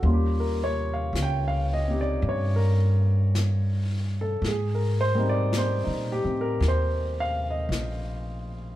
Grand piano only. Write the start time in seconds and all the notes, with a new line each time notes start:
0.03 G3 A#3 C#4 F4
0.13 G4
0.40 A#4
0.64 C#5
0.94 F5
1.22 G5
1.48 F5
1.73 D#5
1.88 C4 D#4 G4
2.01 D5
2.29 C#5
2.56 A#4
4.21 A4
4.48 G#4
4.75 A#4
5.01 C5
5.15 G3 C4 A#4
5.20 D#4
5.29 D5
5.58 C5
5.84 D#4
6.12 G4
6.24 C4
6.41 A#4
6.68 C5
7.20 F5
7.50 D#5